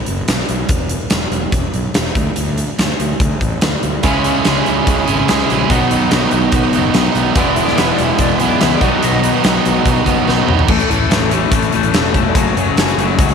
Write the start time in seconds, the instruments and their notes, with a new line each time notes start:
0.06 fingered electric bass F#1, closed hi-hat
0.28 fingered electric bass B1, snare, closed hi-hat
0.39 snare
0.49 fingered electric bass B1, closed hi-hat
0.69 fingered electric bass E1, kick, closed hi-hat
0.89 closed hi-hat
1.10 fingered electric bass E1, snare, closed hi-hat
1.31 fingered electric bass E1, closed hi-hat
1.52 fingered electric bass E1, kick, closed hi-hat
1.74 fingered electric bass B1, closed hi-hat
1.94 fingered electric bass E1, snare, closed hi-hat
2.06 snare
2.15 fingered electric bass D2, kick, closed hi-hat
2.36 fingered electric bass D2, closed hi-hat
2.58 closed hi-hat
2.79 fingered electric bass D2, snare, closed hi-hat
2.90 snare
3.00 fingered electric bass D2, closed hi-hat
3.20 fingered electric bass D2, kick, closed hi-hat
3.41 fingered electric bass A1, kick, closed hi-hat
3.61 fingered electric bass D2, snare, closed hi-hat
3.83 fingered electric bass D2, closed hi-hat
4.03 fingered electric bass C#2, twelve-string acoustic guitar C#3 G#3 C#4 E4 G#4, distorted electric guitar C#3 G#3, tonewheel organ D4 F4 A4 F5, kick, closed hi-hat
4.08 distorted electric guitar C#4
4.18 tonewheel organ C#4 E4 G#4 E5
4.24 overdriven electric guitar C#4 E4 G#4, closed hi-hat
4.35 twelve-string acoustic guitar C#4 E4 G#4
4.45 fingered electric bass C#2, twelve-string acoustic guitar C#3 G#3 C#4 E4 G#4, snare, closed hi-hat
4.66 fingered electric bass C#2, twelve-string acoustic guitar G#3 C#4, closed hi-hat
4.70 twelve-string acoustic guitar E4 G#4
4.87 fingered electric bass C#2, kick, closed hi-hat
4.99 twelve-string acoustic guitar C#4 E4 G#4
5.06 fingered electric bass G#1, twelve-string acoustic guitar G#3 C#4 E4, overdriven electric guitar G#4, closed hi-hat
5.11 twelve-string acoustic guitar G#4
5.28 fingered electric bass C#2, twelve-string acoustic guitar C#3 G#3 C#4 E4 G#4, snare, closed hi-hat
5.40 twelve-string acoustic guitar C#4 E4 G#4, snare
5.48 fingered electric bass A#1, overdriven electric guitar C#4 E4 G#4, closed hi-hat
5.59 twelve-string acoustic guitar C#4 E4 G#4
5.70 fingered electric bass B1, distorted electric guitar B2 F#3 B3, twelve-string acoustic guitar B2 D#3 F#3 B3 D#4 B4, tonewheel organ B3 D#4 F#4 D#5, kick, closed hi-hat
5.91 overdriven electric guitar F#3 B3 D#4, closed hi-hat
6.00 twelve-string acoustic guitar F#3 B3 D#4 B4
6.11 fingered electric bass B1, twelve-string acoustic guitar B2 D#3 F#3 B3 D#4 B4, snare, closed hi-hat
6.22 twelve-string acoustic guitar F#3 B3 D#4 B4
6.31 fingered electric bass B1, twelve-string acoustic guitar F#3 B3 D#4 B4, closed hi-hat
6.52 fingered electric bass B1, kick, closed hi-hat
6.63 twelve-string acoustic guitar F#3 B3 D#4 B4
6.73 fingered electric bass F#1, twelve-string acoustic guitar F#3 B3 D#4 B4, closed hi-hat
6.94 fingered electric bass B1, twelve-string acoustic guitar B2 D#3 F#3 B3 D#4 B4, snare, closed hi-hat
7.04 twelve-string acoustic guitar F#3 B3 D#4 B4
7.15 fingered electric bass B1, overdriven electric guitar F#3 B3 D#4, closed hi-hat
7.25 twelve-string acoustic guitar F#3 B3 D#4 B4
7.35 fingered electric bass E1, distorted electric guitar E2 B2, twelve-string acoustic guitar E3 G#3 B3 E4 B4, tonewheel organ B3 E4 G#4 E5, kick, closed hi-hat
7.39 distorted electric guitar E3, electric slide guitar D5
7.53 electric slide guitar E5, closed hi-hat
7.57 overdriven electric guitar G#3 B3 E4
7.65 twelve-string acoustic guitar B3 E4 B4, electric slide guitar D5, snare
7.75 fingered electric bass E1, twelve-string acoustic guitar E3 G#3 B3 E4 B4, electric slide guitar B4, snare, closed hi-hat
7.79 overdriven electric guitar B3 E4
7.91 twelve-string acoustic guitar G#3, electric slide guitar D5
7.96 fingered electric bass E1, twelve-string acoustic guitar B3 E4 B4, closed hi-hat
8.05 twelve-string acoustic guitar B3 E4 B4, electric slide guitar E5
8.18 fingered electric bass E1, electric slide guitar D5, kick, closed hi-hat
8.27 twelve-string acoustic guitar B3 E4 B4
8.34 electric slide guitar B4
8.38 fingered electric bass B1, twelve-string acoustic guitar G#3 B3 E4 B4, closed hi-hat
8.49 electric slide guitar D5
8.60 fingered electric bass C#2, twelve-string acoustic guitar E3 G#3 B3 E4 B4, electric slide guitar E5, snare, closed hi-hat
8.71 twelve-string acoustic guitar B3 E4 B4, electric slide guitar D5
8.79 fingered electric bass B1, twelve-string acoustic guitar B2 D#3 F#3 B3 D#4 B4, distorted electric guitar B2, tonewheel organ B3 D#4 F#4 D#5, kick, closed hi-hat
8.84 distorted electric guitar F#3 B3
8.91 electric slide guitar B4
9.01 fingered electric bass B1, overdriven electric guitar B2 D#3 F#3 B3 D#4, electric slide guitar D#5, closed hi-hat
9.23 overdriven electric guitar F#3 B3 D#4, closed hi-hat
9.36 twelve-string acoustic guitar F#3 B3 D#4 B4
9.44 fingered electric bass B1, twelve-string acoustic guitar B2 D#3 F#3 B3 D#4 B4, snare, closed hi-hat
9.65 fingered electric bass B1, twelve-string acoustic guitar F#3 B3 D#4 B4, closed hi-hat
9.85 fingered electric bass B1, kick, closed hi-hat
9.97 twelve-string acoustic guitar F#3 B3 D#4 B4
10.05 fingered electric bass F#1, twelve-string acoustic guitar F#3, overdriven electric guitar D#4, kick, closed hi-hat
10.09 twelve-string acoustic guitar B3 D#4 B4
10.27 fingered electric bass B1, twelve-string acoustic guitar B2 D#3 F#3 B3 D#4 B4, snare
10.36 twelve-string acoustic guitar F#3 B3 D#4 B4
10.47 fingered electric bass B1, overdriven electric guitar F#3 B3 D#4, mid tom
10.57 twelve-string acoustic guitar F#3 B3 D#4 B4, floor tom
10.68 fingered electric bass A1, twelve-string acoustic guitar A2 E3 A3 C#4 E4 A4, distorted electric guitar A2 E3 A3, tonewheel organ A3 C#4 E4 C#5, kick, crash
10.79 closed hi-hat
10.88 fingered electric bass A1, distorted electric guitar A2 E3 A3, twelve-string acoustic guitar A3 C#4 E4 A4, closed hi-hat
11.00 twelve-string acoustic guitar A3 C#4 E4 A4
11.09 fingered electric bass A1, twelve-string acoustic guitar A2 E3 A3 C#4 E4 A4, distorted electric guitar A2 E3 A3, snare, closed hi-hat
11.30 distorted electric guitar A2 E3 A3, twelve-string acoustic guitar A3 C#4 E4 A4, closed hi-hat
11.40 twelve-string acoustic guitar A3 C#4 E4 A4
11.51 fingered electric bass A1, distorted electric guitar A2 E3 A3, twelve-string acoustic guitar A2 E3 A3 C#4 E4 A4, kick, closed hi-hat
11.62 twelve-string acoustic guitar A3 C#4 E4 A4, closed hi-hat
11.72 fingered electric bass A1, distorted electric guitar A2 E3 A3, twelve-string acoustic guitar A3 C#4 E4, closed hi-hat
11.77 twelve-string acoustic guitar A4
11.83 twelve-string acoustic guitar A3 C#4 E4 A4, closed hi-hat
11.93 fingered electric bass E1, distorted electric guitar A2 E3 A3, snare, closed hi-hat
12.14 distorted electric guitar A2 E3 A3, twelve-string acoustic guitar A3 C#4 E4 A4, kick, closed hi-hat
12.34 fingered electric bass F#1, distorted electric guitar F#2 C#3 F#3, twelve-string acoustic guitar F#3 A3 C#4 F#4 G#4, tonewheel organ A3 F#4 G#4 C#5, kick, closed hi-hat
12.56 fingered electric bass F#1, distorted electric guitar F#2 C#3 F#3, twelve-string acoustic guitar A3 C#4 F#4 G#4, closed hi-hat
12.67 twelve-string acoustic guitar C#4 F#4 G#4
12.76 fingered electric bass F#1, distorted electric guitar F#2 C#3 F#3, twelve-string acoustic guitar F#3 A3 C#4 F#4 G#4, snare, closed hi-hat
12.88 closed hi-hat
12.98 fingered electric bass F#1, distorted electric guitar F#2 C#3 F#3, twelve-string acoustic guitar A3 C#4 F#4 G#4, closed hi-hat
13.08 twelve-string acoustic guitar C#4 F#4 G#4
13.18 fingered electric bass C#2, distorted electric guitar F#2 C#3 F#3, twelve-string acoustic guitar F#3 A3 C#4 F#4 G#4, kick, closed hi-hat
13.28 twelve-string acoustic guitar C#4 F#4 G#4, closed hi-hat